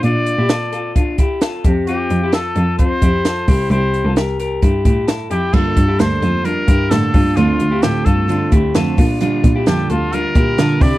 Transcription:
<<
  \new Staff \with { instrumentName = "Trumpet" } { \time 4/4 \key bes \lydian \tempo 4 = 131 d''2 r2 | g'4 a'4 c''2 | c''4 r2 r8 g'8 | a'4 c''4 bes'4 a'4 |
f'4 g'8 a'4 r4. | r4 g'8 f'8 bes'4. d''8 | }
  \new Staff \with { instrumentName = "Clean electric guitar" } { \time 4/4 \key bes \lydian <d' f'>8. <e' g'>16 <f' a'>8 <f' a'>8 <d' f'>8 <e' g'>8 <f' a'>8 <c' g'>8 | <c' f'>8. <e' g'>16 <f' a'>8 <f' a'>8 <c' f'>8 <e' g'>8 <f' a'>8 <e' g'>8 | <e' g'>8. <f' a'>16 <g' bes'>8 <g' bes'>8 <e' g'>8 <e' g'>8 <e' a'>8 <e' g'>8 | <d' f'>8. <e' g'>16 <d' a'>8 <f' a'>8 <d' f'>8 <e' g'>8 <d' a'>8 <d' f'>8 |
<d' f'>8. <e' g'>16 <f' a'>8 <f' a'>8 <d' f'>8 <e' g'>8 <f' a'>8 <d' f'>8 | <d' f'>8. <e' g'>16 <f' a'>8 <f' a'>8 <d' f'>8 <e' g'>8 <f' a'>8 <e' g'>8 | }
  \new Staff \with { instrumentName = "Steel-string acoustic guitar" } { \time 4/4 \key bes \lydian r1 | r1 | r1 | <g, d g bes d' a'>8 <g bes d' a'>8 <g, d g bes d' a'>8 <g bes d' a'>8 <g bes d'>4 <g, d g bes d' a'>8 <g bes d' a'>8 |
<d a c' f'>8 <a c' f'>8 <d a c' f'>8 <a c' f'>8 <d a c' f'>4 <d a c' f'>8 <g d' f'>8 | <bes, d g d' f'>8 <g d' f'>8 <bes, d g d' f'>8 <g d' f'>8 <d g d' f'>4 <bes, d g d' f'>8 <g d' e'>8 | }
  \new Staff \with { instrumentName = "Cello" } { \clef bass \time 4/4 \key bes \lydian bes,8 r16 bes,2~ bes,8. f,8~ | f,8 f,4 f,8. r16 f,4 c,8 | c,8 r16 c,4~ c,16 g,8 a,4 f,8 | g,8 g,8 d,8 f,8. r16 g,8 a,8 g,8 |
d,8 d,8 a,8 g,8. r16 d,8 f,8 bes,8~ | bes,8 bes,8 f,8 d,8. r16 bes,8 d8 c8 | }
  \new DrumStaff \with { instrumentName = "Drums" } \drummode { \time 4/4 hh8 hh8 <hh sn>8 hh8 <hh bd>8 <hh bd>8 <hh sn>8 <hh bd>8 | hh8 hh8 <hh sn>8 hh8 <hh bd>8 <hh bd>8 <hh sn>8 <hho bd>8 | hh8 hh8 <hh sn>8 hh8 <hh bd>8 <hh bd>8 <hh sn>8 hh8 | <cymc bd>8 <hh bd>8 <hh sn>8 hh8 hh8 <hh bd>8 <hh sn>8 <hho bd>8 |
hh8 hh8 <hh sn>8 <hh bd>8 hh8 <hh bd>8 <hh sn>8 <hho bd>8 | hh8 <hh bd>8 <hh sn>8 hh8 hh8 <hh bd>8 <hh sn>8 <hho bd>8 | }
>>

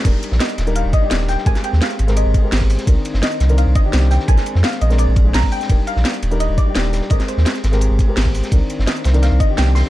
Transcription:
<<
  \new Staff \with { instrumentName = "Synth pluck" } { \time 4/4 \key ees \major \tempo 4 = 170 r4 ees''4 f''8 ees''4 g''8 | aes''8 g''8 f''4 ees''4. r8 | r4 ees''4 f''8 ees''4 g''8 | aes''4 f''8 ees''8 d''4 bes''8 g''8~ |
g''8 f''4. ees''8 d''4 r8 | ees''8 c''4 r2 r8 | r4 ees''4 f''8 ees''8 g''8 c'''8 | }
  \new Staff \with { instrumentName = "Grand piano" } { \time 4/4 \key ees \major <g d' ees' bes'>4.~ <g d' ees' bes'>16 <g d' ees' bes'>4 <g d' ees' g'>4~ <g d' ees' g'>16 | <aes c' g' bes'>4.~ <aes c' g' bes'>16 <aes c' g' bes'>4 <aes c' g' bes'>4~ <aes c' g' bes'>16 | <ees c' d' bes'>4.~ <ees c' d' bes'>16 <ees c' d' bes'>4 <ees c' d' g'>4~ <ees c' d' g'>16 | <aes c' d' bes'>4.~ <aes c' d' bes'>16 <aes c' d' bes'>4 <aes c' d' aes'>4~ <aes c' d' aes'>16 |
<g d' ees' bes'>4.~ <g d' ees' bes'>16 <g d' ees' bes'>4 <g d' ees' g'>4~ <g d' ees' g'>16 | <aes c' g' bes'>4.~ <aes c' g' bes'>16 <aes c' g' bes'>4 <aes c' g' bes'>4~ <aes c' g' bes'>16 | <ees c' d' bes'>4.~ <ees c' d' bes'>16 <ees c' d' bes'>4 <ees c' d' g'>4~ <ees c' d' g'>16 | }
  \new Staff \with { instrumentName = "Sub bass" } { \clef bass \time 4/4 \key ees \major ees,,16 r8 bes,,16 r8 ees,,8. ees,,16 r8 ees,,8. r16 | aes,,16 r8 ees,16 r8 aes,,8. aes,,16 r8 aes,,8. r16 | c,16 r8 g,,16 r8 c,8. c,16 r8 c,8. r16 | bes,,16 r8 f,16 r8 bes,,8. bes,,8. bes,,16 r8. |
ees,,16 r8 bes,,16 r8 ees,,8. ees,,16 r8 ees,,8. r16 | aes,,16 r8 ees,16 r8 aes,,8. aes,,16 r8 aes,,8. r16 | c,16 r8 g,,16 r8 c,8. c,16 r8 c,8. r16 | }
  \new DrumStaff \with { instrumentName = "Drums" } \drummode { \time 4/4 <cymc hh bd cymr>8 <hh cymr>16 sn16 <hh cymr sn>16 hh16 <hh cymr sn>16 hh16 <hh cymr>8 <hh bd cymr>8 <hh cymr sn>16 sn16 <hho cymr sn>16 sn16 | <hh bd cymr>16 <hh sn>16 <hh cymr>16 sn16 <hh cymr sn>16 <hh sn>16 <hh cymr>16 <hh sn>16 <hh cymr>8 <hh bd cymr>8 <hh hho sn>16 <bd sn>16 <hho cymr>16 <hh sn>16 | <hh bd cymr>8 <hh cymr>16 sn16 <hh cymr sn>16 hh16 <hh cymr sn>16 hh16 <hh cymr>8 <hh bd cymr>8 <hh cymr sn>16 sn16 <hho cymr sn>16 sn16 | <hh bd cymr>16 <hh sn>16 <hh cymr>16 sn16 <hh cymr sn>16 <hh sn>16 <hh cymr>16 <hh sn>16 <hh cymr>8 <hh bd cymr>8 <hh hho sn>16 <bd sn>16 <hho cymr>16 <hh sn>16 |
<hh bd cymr>8 <hh cymr>16 sn16 <hh cymr sn>16 hh16 <hh cymr>16 hh16 <hh cymr>8 <hh bd cymr>8 <hh cymr sn>16 sn16 <hho cymr sn>16 sn16 | <hh bd cymr>16 <hh sn>16 <hh cymr>16 sn16 <hh cymr sn>16 <hh sn>16 <hh cymr sn>16 <hh sn>16 <hh cymr>8 <hh bd cymr>8 <hh hho sn>16 <bd sn>16 <hho cymr>16 <hh sn>16 | <hh bd cymr>8 <hh cymr>16 sn16 <hh cymr sn>16 hh16 <hh cymr sn>16 hh16 <hh cymr sn>8 <hh bd cymr>8 <hh cymr sn>16 sn16 <hho sn>16 sn16 | }
>>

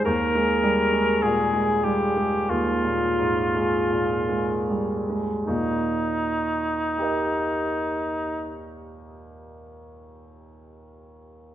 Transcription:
<<
  \new Staff \with { instrumentName = "Cor anglais" } { \time 4/4 \key ees \major \tempo 4 = 40 bes'4 aes'8 g'8 f'4. r8 | ees'1 | }
  \new Staff \with { instrumentName = "Grand piano" } { \time 4/4 \key ees \major r1 | r4 <g' bes' ees''>2. | }
  \new Staff \with { instrumentName = "Grand piano" } { \clef bass \time 4/4 \key ees \major ees,16 aes16 g16 aes16 bes,16 aes16 g16 aes16 ees,16 bes,16 aes,16 aes16 bes,16 aes16 g16 aes16 | <ees, bes,>1 | }
>>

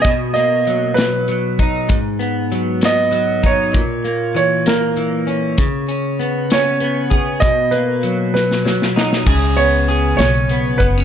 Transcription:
<<
  \new Staff \with { instrumentName = "Grand piano" } { \time 6/8 \key cis \dorian \tempo 4. = 65 dis''8 dis''4 b'4 r8 | r4. dis''4 cis''8~ | cis''4 cis''8 ais'4 r8 | r4. cis''4. |
dis''8 b'4 b'4 r8 | r8 cis''4 cis''4 b'8 | }
  \new Staff \with { instrumentName = "Clean electric guitar" } { \time 6/8 \key cis \dorian b,8 ais8 fis4 fis8 dis'8 | gis,8 b8 fis8 b8 fis8 dis'8 | ais,8 ais8 e8 ais8 e8 cis'8 | cis8 cis'8 b8 cis'8 b8 gis'8 |
b,8 ais8 fis4 fis8 dis'8 | <cis gis'>8 b8 gis'8 cis'8 b8 b16 cis'16 | }
  \new Staff \with { instrumentName = "Upright bass" } { \clef bass \time 6/8 \key cis \dorian r2. | r2. | r2. | r2. |
r2. | cis,4. b,,4 fis,,8 | }
  \new DrumStaff \with { instrumentName = "Drums" } \drummode { \time 6/8 <hh bd>8 hh8 hh8 <hh sn>8 hh8 <hh bd>8 | <hh bd>8 hh8 hh8 <hh sn>8 hh8 <hh bd>8 | <hh bd>8 hh8 hh8 <hh sn>8 hh8 hh8 | <hh bd>8 hh8 hh8 <hh sn>8 hh8 <hh bd>8 |
<hh bd>8 hh8 hh8 sn16 sn16 sn16 sn16 sn16 sn16 | <cymc bd>8 hh8 hh8 <hh sn>8 hh8 <hh bd>8 | }
>>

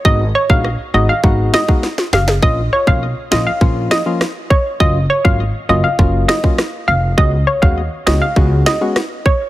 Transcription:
<<
  \new Staff \with { instrumentName = "Synth pluck" } { \time 4/4 \key bes \phrygian \tempo 4 = 101 ees''16 r16 des''16 f''16 r8 ees''16 f''16 r8 ees''16 r8. f''16 r16 | ees''16 r16 des''16 f''16 r8 ees''16 f''16 r8 ees''16 r8. des''16 r16 | ees''16 r16 des''16 f''16 r8 ees''16 f''16 r8 ees''16 r8. f''16 r16 | ees''16 r16 des''16 f''16 r8 ees''16 f''16 r8 ees''16 r8. des''16 r16 | }
  \new Staff \with { instrumentName = "Synth stab" } { \time 4/4 \key bes \phrygian <aes ces' ees' ges'>16 r8 <aes ces' ees' ges'>16 r8 <aes ces' ees' ges'>16 r16 <aes ces' ees' ges'>8. <aes ces' ees' ges'>16 r4 | <f bes des' f'>16 r8 <f bes des' f'>16 r8 <f bes des' f'>16 r16 <f bes des' f'>8. <f bes des' f'>16 r4 | <ges bes des' f'>16 r8 <ges bes des' f'>16 r8 <ges bes des' f'>16 r16 <ges bes des' f'>8. <ges bes des' f'>16 r4 | <aes ces' des' ges'>16 r8 <aes ces' des' ges'>16 r8 <aes ces' des' ges'>16 r16 <aes ces' des' ges'>8. <aes ces' des' ges'>16 r4 | }
  \new Staff \with { instrumentName = "Upright bass" } { \clef bass \time 4/4 \key bes \phrygian aes,,8 r16 bes,,8 r16 aes,,16 r16 aes,,8 r4 ges,,8 | bes,,8 r16 ces,8 r16 bes,,16 r16 bes,,8 r4. | ges,,8 r16 aes,,8 r16 ges,,16 r16 ges,,8 r4 f,,8 | des,8 r16 ees,8 r16 des,16 r16 des,8 r4. | }
  \new DrumStaff \with { instrumentName = "Drums" } \drummode { \time 4/4 bd8. bd16 ss4 bd8 sn16 bd16 sn16 sn16 sn16 sn16 | bd8. bd16 r8 sn8 bd8 sn8 <ss sn>8 bd8 | bd8. bd16 r4 bd8 sn16 bd16 <ss sn>4 | bd8. bd16 r8 sn8 bd8 sn8 <ss sn>8 bd8 | }
>>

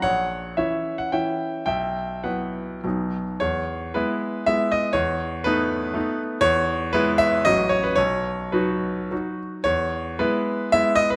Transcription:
<<
  \new Staff \with { instrumentName = "Grand piano" } { \time 3/4 \key e \major \tempo 4 = 113 <cis'' fis''>4 <cis'' e''>8. fis''16 <e'' g''>4 | <e'' g''>4 <b' fis''>4 r4 | cis''4 b'4 e''8 dis''8 | cis''4 b'4. r8 |
cis''4 b'8 e''8 dis''8 cis''16 b'16 | cis''4 b'4. r8 | cis''4 b'4 e''8 dis''16 b'16 | }
  \new Staff \with { instrumentName = "Grand piano" } { \time 3/4 \key e \major ais,,4 <e cis' e'>4 <e cis' e'>4 | b,,4 <fis b e'>4 <b,, fis b dis'>4 | e,4 <gis b e'>4 <gis b e'>4 | e,4 <a b dis'>4 <a b dis'>4 |
e,4 <gis b e'>4 <a,, fis cis' fis'>4 | b,,4 <fis dis' fis'>4 <fis dis' fis'>4 | e,4 <gis b e'>4 <gis b e'>4 | }
>>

